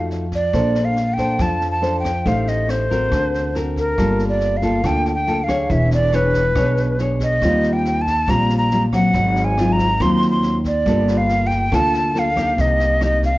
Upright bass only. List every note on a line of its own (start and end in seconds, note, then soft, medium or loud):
0.00 0.50 F2 medium
0.53 1.36 A#1 medium
1.39 2.22 F2 medium
2.26 3.08 A1 loud
3.12 3.94 D2 medium
3.98 4.80 G1 medium
4.84 5.66 D2 medium
5.70 6.52 E1 loud
6.56 7.38 B1 medium
7.42 8.24 D#2 loud
8.28 9.10 A#1 medium
9.14 9.96 G#1 loud
10.00 10.82 D#2 loud
10.86 11.68 G1 loud
11.72 12.54 D2 medium
12.59 13.38 C2 medium